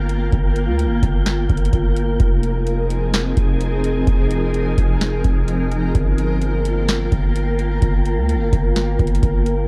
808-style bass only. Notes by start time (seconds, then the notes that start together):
Already playing: G1
0.32 G1
0.68 D2
0.85 G1
1.03 G1
1.50 G1
1.73 G1
2.20 F1
3.37 F1
4.07 F1
4.78 F1
5.24 F1
5.95 G1
7.12 G1
7.82 G1
8.17 D2
8.35 G1
8.53 G1
8.99 G1
9.23 G1